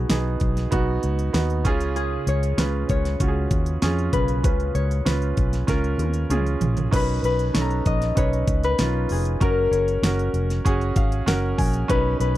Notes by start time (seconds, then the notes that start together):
Already playing: B2 B3 D#4 F#4 G#4
0.09 B1 B3 D#4 G#4, snare, closed hi-hat
0.40 B1, kick, closed hi-hat
0.57 snare, closed hi-hat
0.71 B1 B3 D#4 F#4, kick, closed hi-hat
1.03 C#2, closed hi-hat
1.19 closed hi-hat
1.33 D#2 B3 D#4 F#4, snare, closed hi-hat
1.50 closed hi-hat
1.64 C#2 C#3 C#4 F4 G#4, kick, closed hi-hat
1.81 closed hi-hat
1.96 G#4, closed hi-hat
2.27 C#2 C#5, closed hi-hat
2.43 closed hi-hat
2.57 C#2 C#4 F4 B4, snare, closed hi-hat
2.89 C#2 C#5, kick, closed hi-hat
3.05 snare, closed hi-hat
3.20 C#2 C#4 F4 F#4, kick, closed hi-hat
3.28 G#4
3.51 D#2, kick, closed hi-hat
3.66 closed hi-hat
3.82 F2 C#4 F4 G#4, snare, closed hi-hat
3.99 closed hi-hat
4.13 B1 C#3 B4, kick, closed hi-hat
4.28 closed hi-hat
4.43 C#2 C#4 F4 B4, kick, closed hi-hat
4.60 closed hi-hat
4.75 C#2 C#5, closed hi-hat
4.91 closed hi-hat
5.05 C#2 C#4 F4 B4, snare, closed hi-hat
5.22 closed hi-hat
5.37 B1, kick, closed hi-hat
5.53 snare, closed hi-hat
5.67 C#2 C#4 F4 A#4, kick, snare, closed hi-hat
5.84 closed hi-hat
5.98 D#2, closed hi-hat, high tom
6.14 closed hi-hat
6.30 C#2 C#4 F4 G#4, closed hi-hat, mid tom
6.46 closed hi-hat
6.61 A#1, closed hi-hat, floor tom
6.77 closed hi-hat, floor tom
6.91 B1 B2 C#4 D#4 B4, kick, closed hi-hat, crash
6.96 B4
7.23 B1 B4, closed hi-hat
7.39 closed hi-hat
7.54 B1 C#4 D#4 A4, snare, closed hi-hat
7.62 A#5
7.71 closed hi-hat
7.86 A#1 D#5, kick, closed hi-hat
8.02 snare, closed hi-hat
8.15 B1 C#4 D#4 B4 C#5, kick, closed hi-hat
8.33 closed hi-hat
8.47 C#2, kick, closed hi-hat
8.63 B4, closed hi-hat
8.79 B1 C#4 D#4 F4, snare, closed hi-hat
9.09 F1 G#4, open hi-hat
9.25 closed hi-hat
9.40 F#1 C#4 F#4 A#4, kick, closed hi-hat
9.71 F#1 C#5, closed hi-hat
9.88 closed hi-hat
10.02 F#1 C#4 F#4 A#4, snare, closed hi-hat
10.19 closed hi-hat
10.34 F1, closed hi-hat
10.50 snare, closed hi-hat
10.65 F#1 C#4 F#4 G#4, kick, closed hi-hat
10.81 closed hi-hat
10.96 G#1 F5, kick, closed hi-hat
11.12 closed hi-hat
11.26 F#1 C#4 F#4 A#4 F#5, snare, closed hi-hat
11.58 A#1 G#5, kick, open hi-hat
11.73 closed hi-hat
11.88 B1 B2 C#4 D#4 B4, kick, closed hi-hat
12.20 B1 B4, closed hi-hat